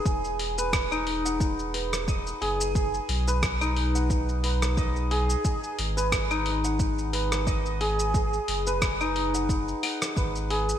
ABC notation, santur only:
X:1
M:4/4
L:1/16
Q:"Swing 16ths" 1/4=89
K:G#m
V:1 name="Santur"
G z2 B z D2 f z2 B z d z G z | G z2 B z D2 f z2 B z d z G z | G z2 B z D2 f z2 B z d z G z | G z2 B z D2 f z2 f z B z G z |]